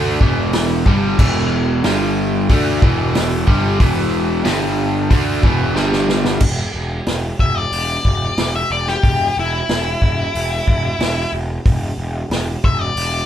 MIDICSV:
0, 0, Header, 1, 5, 480
1, 0, Start_track
1, 0, Tempo, 654308
1, 878, Time_signature, 4, 2, 24, 8
1, 9726, End_track
2, 0, Start_track
2, 0, Title_t, "Lead electric guitar"
2, 0, Program_c, 0, 29
2, 5431, Note_on_c, 0, 76, 85
2, 5559, Note_off_c, 0, 76, 0
2, 5559, Note_on_c, 0, 74, 74
2, 6254, Note_off_c, 0, 74, 0
2, 6277, Note_on_c, 0, 76, 82
2, 6391, Note_off_c, 0, 76, 0
2, 6397, Note_on_c, 0, 74, 81
2, 6511, Note_off_c, 0, 74, 0
2, 6517, Note_on_c, 0, 67, 78
2, 6865, Note_off_c, 0, 67, 0
2, 6891, Note_on_c, 0, 64, 90
2, 8297, Note_off_c, 0, 64, 0
2, 9279, Note_on_c, 0, 76, 98
2, 9399, Note_off_c, 0, 76, 0
2, 9399, Note_on_c, 0, 74, 85
2, 9726, Note_off_c, 0, 74, 0
2, 9726, End_track
3, 0, Start_track
3, 0, Title_t, "Overdriven electric guitar"
3, 0, Program_c, 1, 29
3, 0, Note_on_c, 1, 50, 92
3, 0, Note_on_c, 1, 57, 97
3, 0, Note_on_c, 1, 62, 102
3, 151, Note_off_c, 1, 50, 0
3, 153, Note_off_c, 1, 57, 0
3, 155, Note_off_c, 1, 62, 0
3, 155, Note_on_c, 1, 40, 86
3, 155, Note_on_c, 1, 47, 98
3, 158, Note_on_c, 1, 52, 114
3, 629, Note_off_c, 1, 40, 0
3, 629, Note_off_c, 1, 47, 0
3, 631, Note_off_c, 1, 52, 0
3, 634, Note_on_c, 1, 43, 87
3, 635, Note_on_c, 1, 50, 94
3, 638, Note_on_c, 1, 55, 101
3, 866, Note_off_c, 1, 43, 0
3, 869, Note_off_c, 1, 50, 0
3, 869, Note_on_c, 1, 40, 83
3, 871, Note_off_c, 1, 55, 0
3, 874, Note_on_c, 1, 47, 101
3, 877, Note_on_c, 1, 52, 109
3, 1346, Note_off_c, 1, 40, 0
3, 1348, Note_off_c, 1, 47, 0
3, 1350, Note_off_c, 1, 52, 0
3, 1353, Note_on_c, 1, 50, 102
3, 1354, Note_on_c, 1, 43, 82
3, 1358, Note_on_c, 1, 55, 91
3, 1822, Note_off_c, 1, 50, 0
3, 1828, Note_off_c, 1, 43, 0
3, 1830, Note_off_c, 1, 55, 0
3, 1831, Note_on_c, 1, 50, 106
3, 1835, Note_on_c, 1, 57, 110
3, 1836, Note_on_c, 1, 62, 112
3, 2066, Note_off_c, 1, 50, 0
3, 2068, Note_off_c, 1, 57, 0
3, 2069, Note_off_c, 1, 62, 0
3, 2069, Note_on_c, 1, 40, 101
3, 2070, Note_on_c, 1, 47, 107
3, 2071, Note_on_c, 1, 52, 115
3, 2541, Note_off_c, 1, 40, 0
3, 2544, Note_on_c, 1, 43, 93
3, 2545, Note_off_c, 1, 47, 0
3, 2545, Note_off_c, 1, 52, 0
3, 2550, Note_on_c, 1, 50, 91
3, 2553, Note_on_c, 1, 55, 90
3, 2782, Note_off_c, 1, 43, 0
3, 2785, Note_off_c, 1, 50, 0
3, 2786, Note_off_c, 1, 55, 0
3, 2791, Note_on_c, 1, 40, 82
3, 2795, Note_on_c, 1, 47, 92
3, 2798, Note_on_c, 1, 52, 106
3, 3261, Note_off_c, 1, 40, 0
3, 3261, Note_on_c, 1, 43, 90
3, 3264, Note_off_c, 1, 47, 0
3, 3264, Note_on_c, 1, 50, 96
3, 3268, Note_off_c, 1, 52, 0
3, 3268, Note_on_c, 1, 55, 102
3, 3737, Note_off_c, 1, 50, 0
3, 3739, Note_off_c, 1, 43, 0
3, 3743, Note_off_c, 1, 55, 0
3, 3745, Note_on_c, 1, 50, 98
3, 3750, Note_on_c, 1, 57, 108
3, 3753, Note_on_c, 1, 62, 103
3, 3981, Note_off_c, 1, 50, 0
3, 3983, Note_on_c, 1, 40, 88
3, 3984, Note_off_c, 1, 57, 0
3, 3985, Note_off_c, 1, 62, 0
3, 3986, Note_on_c, 1, 47, 89
3, 3990, Note_on_c, 1, 52, 100
3, 4216, Note_off_c, 1, 40, 0
3, 4219, Note_on_c, 1, 43, 87
3, 4222, Note_off_c, 1, 47, 0
3, 4222, Note_off_c, 1, 52, 0
3, 4225, Note_on_c, 1, 55, 95
3, 4227, Note_on_c, 1, 50, 96
3, 4698, Note_off_c, 1, 43, 0
3, 4701, Note_off_c, 1, 55, 0
3, 4702, Note_off_c, 1, 50, 0
3, 9726, End_track
4, 0, Start_track
4, 0, Title_t, "Picked electric bass"
4, 0, Program_c, 2, 34
4, 0, Note_on_c, 2, 38, 86
4, 138, Note_off_c, 2, 38, 0
4, 151, Note_on_c, 2, 28, 93
4, 605, Note_off_c, 2, 28, 0
4, 628, Note_on_c, 2, 31, 101
4, 856, Note_off_c, 2, 31, 0
4, 871, Note_on_c, 2, 28, 98
4, 1325, Note_off_c, 2, 28, 0
4, 1355, Note_on_c, 2, 31, 96
4, 1806, Note_off_c, 2, 31, 0
4, 1828, Note_on_c, 2, 38, 85
4, 2055, Note_off_c, 2, 38, 0
4, 2070, Note_on_c, 2, 28, 94
4, 2523, Note_off_c, 2, 28, 0
4, 2549, Note_on_c, 2, 31, 89
4, 2774, Note_off_c, 2, 31, 0
4, 2787, Note_on_c, 2, 28, 101
4, 3241, Note_off_c, 2, 28, 0
4, 3269, Note_on_c, 2, 31, 89
4, 3721, Note_off_c, 2, 31, 0
4, 3747, Note_on_c, 2, 38, 83
4, 3972, Note_off_c, 2, 38, 0
4, 3983, Note_on_c, 2, 28, 86
4, 4210, Note_off_c, 2, 28, 0
4, 4229, Note_on_c, 2, 31, 92
4, 4680, Note_off_c, 2, 31, 0
4, 4699, Note_on_c, 2, 28, 93
4, 4881, Note_off_c, 2, 28, 0
4, 4945, Note_on_c, 2, 28, 80
4, 5125, Note_off_c, 2, 28, 0
4, 5186, Note_on_c, 2, 28, 83
4, 5365, Note_off_c, 2, 28, 0
4, 5423, Note_on_c, 2, 28, 81
4, 5604, Note_off_c, 2, 28, 0
4, 5662, Note_on_c, 2, 28, 83
4, 5843, Note_off_c, 2, 28, 0
4, 5901, Note_on_c, 2, 28, 80
4, 6083, Note_off_c, 2, 28, 0
4, 6144, Note_on_c, 2, 28, 75
4, 6325, Note_off_c, 2, 28, 0
4, 6385, Note_on_c, 2, 28, 82
4, 6565, Note_off_c, 2, 28, 0
4, 6626, Note_on_c, 2, 28, 89
4, 6806, Note_off_c, 2, 28, 0
4, 6875, Note_on_c, 2, 28, 88
4, 7052, Note_off_c, 2, 28, 0
4, 7109, Note_on_c, 2, 28, 82
4, 7289, Note_off_c, 2, 28, 0
4, 7346, Note_on_c, 2, 28, 78
4, 7527, Note_off_c, 2, 28, 0
4, 7592, Note_on_c, 2, 28, 82
4, 7771, Note_off_c, 2, 28, 0
4, 7828, Note_on_c, 2, 28, 83
4, 8009, Note_off_c, 2, 28, 0
4, 8063, Note_on_c, 2, 28, 86
4, 8246, Note_off_c, 2, 28, 0
4, 8308, Note_on_c, 2, 28, 91
4, 8489, Note_off_c, 2, 28, 0
4, 8550, Note_on_c, 2, 28, 93
4, 8731, Note_off_c, 2, 28, 0
4, 8786, Note_on_c, 2, 28, 83
4, 8969, Note_off_c, 2, 28, 0
4, 9025, Note_on_c, 2, 28, 81
4, 9209, Note_off_c, 2, 28, 0
4, 9272, Note_on_c, 2, 28, 85
4, 9454, Note_off_c, 2, 28, 0
4, 9507, Note_on_c, 2, 28, 88
4, 9691, Note_off_c, 2, 28, 0
4, 9726, End_track
5, 0, Start_track
5, 0, Title_t, "Drums"
5, 153, Note_on_c, 9, 36, 104
5, 226, Note_off_c, 9, 36, 0
5, 389, Note_on_c, 9, 46, 58
5, 392, Note_on_c, 9, 38, 111
5, 462, Note_off_c, 9, 46, 0
5, 465, Note_off_c, 9, 38, 0
5, 632, Note_on_c, 9, 36, 103
5, 705, Note_off_c, 9, 36, 0
5, 872, Note_on_c, 9, 36, 110
5, 872, Note_on_c, 9, 49, 99
5, 946, Note_off_c, 9, 36, 0
5, 946, Note_off_c, 9, 49, 0
5, 1348, Note_on_c, 9, 46, 53
5, 1351, Note_on_c, 9, 38, 103
5, 1422, Note_off_c, 9, 46, 0
5, 1425, Note_off_c, 9, 38, 0
5, 1830, Note_on_c, 9, 46, 67
5, 1831, Note_on_c, 9, 36, 107
5, 1903, Note_off_c, 9, 46, 0
5, 1904, Note_off_c, 9, 36, 0
5, 2071, Note_on_c, 9, 36, 115
5, 2145, Note_off_c, 9, 36, 0
5, 2310, Note_on_c, 9, 46, 61
5, 2313, Note_on_c, 9, 38, 110
5, 2384, Note_off_c, 9, 46, 0
5, 2387, Note_off_c, 9, 38, 0
5, 2550, Note_on_c, 9, 36, 96
5, 2623, Note_off_c, 9, 36, 0
5, 2787, Note_on_c, 9, 46, 61
5, 2789, Note_on_c, 9, 36, 107
5, 2861, Note_off_c, 9, 46, 0
5, 2862, Note_off_c, 9, 36, 0
5, 3265, Note_on_c, 9, 46, 52
5, 3268, Note_on_c, 9, 38, 98
5, 3339, Note_off_c, 9, 46, 0
5, 3342, Note_off_c, 9, 38, 0
5, 3747, Note_on_c, 9, 36, 111
5, 3747, Note_on_c, 9, 46, 59
5, 3820, Note_off_c, 9, 36, 0
5, 3820, Note_off_c, 9, 46, 0
5, 3986, Note_on_c, 9, 36, 106
5, 4059, Note_off_c, 9, 36, 0
5, 4223, Note_on_c, 9, 38, 61
5, 4297, Note_off_c, 9, 38, 0
5, 4346, Note_on_c, 9, 38, 63
5, 4419, Note_off_c, 9, 38, 0
5, 4467, Note_on_c, 9, 38, 87
5, 4541, Note_off_c, 9, 38, 0
5, 4581, Note_on_c, 9, 38, 100
5, 4655, Note_off_c, 9, 38, 0
5, 4698, Note_on_c, 9, 57, 106
5, 4703, Note_on_c, 9, 36, 109
5, 4772, Note_off_c, 9, 57, 0
5, 4776, Note_off_c, 9, 36, 0
5, 5182, Note_on_c, 9, 46, 53
5, 5185, Note_on_c, 9, 38, 97
5, 5256, Note_off_c, 9, 46, 0
5, 5259, Note_off_c, 9, 38, 0
5, 5424, Note_on_c, 9, 36, 75
5, 5497, Note_off_c, 9, 36, 0
5, 5666, Note_on_c, 9, 46, 62
5, 5740, Note_off_c, 9, 46, 0
5, 5905, Note_on_c, 9, 36, 79
5, 5978, Note_off_c, 9, 36, 0
5, 6144, Note_on_c, 9, 46, 56
5, 6147, Note_on_c, 9, 38, 104
5, 6218, Note_off_c, 9, 46, 0
5, 6221, Note_off_c, 9, 38, 0
5, 6511, Note_on_c, 9, 38, 33
5, 6584, Note_off_c, 9, 38, 0
5, 6628, Note_on_c, 9, 36, 111
5, 6628, Note_on_c, 9, 46, 54
5, 6701, Note_off_c, 9, 36, 0
5, 6702, Note_off_c, 9, 46, 0
5, 7109, Note_on_c, 9, 46, 48
5, 7112, Note_on_c, 9, 38, 101
5, 7182, Note_off_c, 9, 46, 0
5, 7185, Note_off_c, 9, 38, 0
5, 7350, Note_on_c, 9, 36, 79
5, 7423, Note_off_c, 9, 36, 0
5, 7594, Note_on_c, 9, 46, 56
5, 7667, Note_off_c, 9, 46, 0
5, 7832, Note_on_c, 9, 36, 88
5, 7905, Note_off_c, 9, 36, 0
5, 8072, Note_on_c, 9, 46, 52
5, 8075, Note_on_c, 9, 38, 104
5, 8145, Note_off_c, 9, 46, 0
5, 8148, Note_off_c, 9, 38, 0
5, 8550, Note_on_c, 9, 46, 51
5, 8552, Note_on_c, 9, 36, 110
5, 8623, Note_off_c, 9, 46, 0
5, 8625, Note_off_c, 9, 36, 0
5, 9030, Note_on_c, 9, 46, 51
5, 9033, Note_on_c, 9, 38, 92
5, 9104, Note_off_c, 9, 46, 0
5, 9107, Note_off_c, 9, 38, 0
5, 9273, Note_on_c, 9, 36, 85
5, 9346, Note_off_c, 9, 36, 0
5, 9513, Note_on_c, 9, 46, 66
5, 9586, Note_off_c, 9, 46, 0
5, 9726, End_track
0, 0, End_of_file